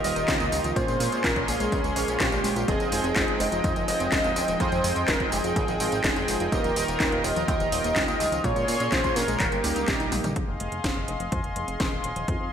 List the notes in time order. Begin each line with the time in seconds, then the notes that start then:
Already playing: D#3 D#4 F4 G4 A#4
0.04 D#1 D#3 G3 A#3 F4 G4 D#5, open hi-hat, tambourine
0.16 D#1 A#3, closed hi-hat, tambourine
0.28 C#2 D#4, kick, snare, clap, closed hi-hat, tambourine
0.40 C#2 A#3, closed hi-hat, tambourine
0.52 C#2 G3, open hi-hat, tambourine
0.64 C#2 F3, closed hi-hat, tambourine
0.76 A#2 F3 G#3 A#3 C#4 F4 G#4 C5 C6, kick, closed hi-hat, tambourine
0.88 A#2 G#3, closed hi-hat, tambourine
1.00 A#2 A#3, open hi-hat, tambourine
1.12 A#2 C#4, closed hi-hat, tambourine
1.24 A#1 F4 A#4, kick, snare, clap, closed hi-hat, tambourine
1.36 A#1 C#4, kick, closed hi-hat
1.48 A#1 A#3 G#4, open hi-hat, tambourine
1.60 A#1 G#3, closed hi-hat, tambourine
1.72 C#2 F3, kick, closed hi-hat, tambourine
1.84 C#2 G#3, closed hi-hat, tambourine
1.96 A#1 A#2 G#3 A#3 C#4 F4 C#5, open hi-hat, tambourine
2.08 A#1 A#3, closed hi-hat, tambourine
2.20 A#1 F4 G4, kick, snare, clap, closed hi-hat, tambourine
2.32 A#1 A#3, closed hi-hat, tambourine
2.44 A#1 G#3, open hi-hat, tambourine
2.56 A#1 F4, closed hi-hat, tambourine
2.68 F1 D#3 F3 C4 D#4 F4 G#4 D#5 G5, kick, closed hi-hat, tambourine
2.80 F1 F3, closed hi-hat, tambourine
2.92 F1 G#3, open hi-hat, tambourine
3.04 F1 C4, closed hi-hat, tambourine
3.16 F1 D#4, kick, snare, clap, closed hi-hat, tambourine
3.28 F1 C4, closed hi-hat
3.40 F1 G#3 D#5, open hi-hat, tambourine
3.52 F1 F3, closed hi-hat, tambourine
3.64 F2 D#3, kick, closed hi-hat, tambourine
3.76 F1 F3, closed hi-hat, tambourine
3.88 F1 F3 G#3 C4 F4 G#4 D#5, open hi-hat, tambourine
4.00 F1 C4, closed hi-hat, tambourine
4.12 D#1 D#4, kick, snare, clap, closed hi-hat, tambourine
4.24 D#1 C4, closed hi-hat, tambourine
4.36 D#1 G#3, open hi-hat, tambourine
4.48 D#1 F3, closed hi-hat, tambourine
4.60 F2 D#3 F3 C4 F4 G#4 C5 D#5, kick, closed hi-hat, tambourine
4.72 F2 F3, closed hi-hat, tambourine
4.84 F2 G#3, open hi-hat, tambourine
4.96 F2 C4, closed hi-hat, tambourine
5.08 F1 D#4 A#4, kick, snare, clap, closed hi-hat, tambourine
5.20 F1 C4, kick, closed hi-hat
5.32 F1 G#3 G#4, open hi-hat, tambourine
5.44 F1 F3, closed hi-hat, tambourine
5.56 G#1 D#3, kick, closed hi-hat, tambourine
5.68 G#1 F3, closed hi-hat, tambourine
5.80 G#1 F3 G#3 C4 F4 G#4 D#5, open hi-hat, tambourine
5.92 G#1 C4, closed hi-hat, tambourine
6.04 F1 D#4 G#4, kick, snare, clap, closed hi-hat, tambourine
6.16 F1 C4, closed hi-hat, tambourine
6.28 F1 G#3, open hi-hat, tambourine
6.40 F1 F3, closed hi-hat, tambourine
6.52 D#1 D#3 A#3 F4 G4 A#4 D#5, kick, closed hi-hat, tambourine
6.64 D#1 F3, closed hi-hat, tambourine
6.76 D#1 G3, open hi-hat, tambourine
6.88 D#1 A#3, closed hi-hat, tambourine
7.00 D#1 D#4, kick, snare, clap, closed hi-hat, tambourine
7.12 D#1 A#3, closed hi-hat
7.24 D#1 G3 D#5, open hi-hat, tambourine
7.36 D#1 F3, closed hi-hat, tambourine
7.48 D#2 D#3, kick, closed hi-hat, tambourine
7.60 D#1 F3, closed hi-hat, tambourine
7.72 D#1 D#3 G3 A#3 F4 G4 D#5, open hi-hat, tambourine
7.84 D#1 A#3, closed hi-hat, tambourine
7.96 C#2 D#4, kick, snare, clap, closed hi-hat, tambourine
8.08 C#2 A#3, closed hi-hat, tambourine
8.20 C#2 G3, open hi-hat, tambourine
8.32 C#2 F3, closed hi-hat, tambourine
8.44 A#2 F3 A#3 F4 G#4 C#5 C6, kick, closed hi-hat, tambourine
8.56 A#2 G#3, closed hi-hat, tambourine
8.68 A#2 A#3, open hi-hat, tambourine
8.80 A#2 C#4, closed hi-hat, tambourine
8.92 A#1 F4 C5, kick, snare, clap, closed hi-hat, tambourine
9.04 A#1 C#4, kick, closed hi-hat, tambourine
9.16 A#1 A#3 A#4, snare, open hi-hat, tambourine
9.28 A#1 G#3, closed hi-hat, tambourine
9.40 D#1 D#3 A#3 D#4 G4, kick, clap, closed hi-hat, tambourine
9.52 G1 G3, closed hi-hat, tambourine
9.64 C#2 G3 A#3 D#4 A#4, open hi-hat, tambourine
9.76 C#2 D#4, closed hi-hat, tambourine
9.88 A#1 G4, kick, snare, clap, closed hi-hat, tambourine
10.00 A#1 D#4, closed hi-hat, tambourine
10.12 A#1 A#3, open hi-hat, high tom, tambourine
10.24 A#1 G3, closed hi-hat, mid tom, tambourine
10.36 F1 D#3 G#4 D#5 F5 C6, kick, closed hi-hat
10.48 F1 F3
10.60 F1 G#3, closed hi-hat
10.72 F1 C4, closed hi-hat
10.84 F1 D#4, kick, snare, closed hi-hat
10.96 F1 C4
11.08 F1 G#3, closed hi-hat
11.20 F1 F3, closed hi-hat
11.32 F2, kick, closed hi-hat
11.44 F1 F3, closed hi-hat
11.56 F1 F3 G#3 C4 D#4 G#4, closed hi-hat
11.68 F1 C4, closed hi-hat
11.80 D#1 D#4, kick, snare, closed hi-hat
11.92 D#1 C4
12.04 D#1 G#3, closed hi-hat
12.16 D#1 F3, closed hi-hat
12.28 F2 F3 C4 D#4 G#4, kick, closed hi-hat
12.40 F2 F3